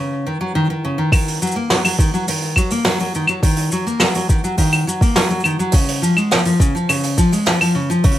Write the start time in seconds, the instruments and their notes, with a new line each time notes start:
Already playing: steel-string acoustic guitar C#3
0.27 steel-string acoustic guitar D#3
0.41 steel-string acoustic guitar F#3
0.55 steel-string acoustic guitar D#3
0.70 steel-string acoustic guitar D#3
0.85 steel-string acoustic guitar C#3
0.98 steel-string acoustic guitar D#3
1.12 steel-string acoustic guitar D#3, kick, open hi-hat, claves, shaker
1.28 open hi-hat, shaker
1.42 steel-string acoustic guitar F#3, shaker
1.47 shaker
1.51 shaker
1.56 steel-string acoustic guitar A#3
1.70 steel-string acoustic guitar F#3, snare, open hi-hat, shaker
1.85 steel-string acoustic guitar F#3, open hi-hat, claves, shaker
1.99 steel-string acoustic guitar D#3, kick, shaker
2.14 steel-string acoustic guitar F#3, shaker
2.28 steel-string acoustic guitar D#3, open hi-hat, shaker
2.42 open hi-hat
2.56 steel-string acoustic guitar F#3, kick, claves, shaker
2.70 steel-string acoustic guitar A#3, open hi-hat, shaker
2.84 steel-string acoustic guitar F#3, snare, open hi-hat, shaker
2.99 steel-string acoustic guitar F#3, open hi-hat, shaker
3.15 steel-string acoustic guitar D#3, shaker
3.27 steel-string acoustic guitar F#3, claves, shaker
3.43 steel-string acoustic guitar D#3, kick, open hi-hat, shaker
3.56 open hi-hat, shaker
3.72 steel-string acoustic guitar F#3, shaker
3.87 steel-string acoustic guitar A#3, shaker
4.00 steel-string acoustic guitar F#3, snare, open hi-hat, claves, shaker
4.14 steel-string acoustic guitar F#3, open hi-hat, shaker
4.29 steel-string acoustic guitar D#3, kick, shaker
4.44 steel-string acoustic guitar F#3, shaker
4.57 steel-string acoustic guitar D#3, kick, open hi-hat, shaker
4.72 open hi-hat, claves, shaker
4.87 steel-string acoustic guitar F#3, shaker
5.01 steel-string acoustic guitar A#3, kick, open hi-hat, shaker
5.16 steel-string acoustic guitar F#3, snare, open hi-hat, shaker
5.30 steel-string acoustic guitar F#3, shaker
5.40 shaker
5.44 steel-string acoustic guitar D#3, claves, shaker
5.59 steel-string acoustic guitar F#3, shaker
5.72 steel-string acoustic guitar C#3, kick, open hi-hat, shaker
5.88 open hi-hat, shaker
6.02 steel-string acoustic guitar F3, shaker
6.17 steel-string acoustic guitar G#3, claves, shaker
6.31 steel-string acoustic guitar F3, snare, open hi-hat, shaker
6.45 steel-string acoustic guitar F3, open hi-hat, shaker
6.60 steel-string acoustic guitar C#3, kick, shaker
6.75 steel-string acoustic guitar F3, shaker
6.89 steel-string acoustic guitar C#3, open hi-hat, claves, shaker
7.03 open hi-hat, shaker
7.18 steel-string acoustic guitar F3, kick, shaker
7.32 steel-string acoustic guitar G#3, open hi-hat, shaker
7.46 steel-string acoustic guitar F3, snare, open hi-hat, shaker
7.61 steel-string acoustic guitar F3, open hi-hat, claves, shaker
7.75 steel-string acoustic guitar C#3
7.90 steel-string acoustic guitar F3, shaker
8.03 steel-string acoustic guitar C#3, kick, open hi-hat, shaker
8.11 open hi-hat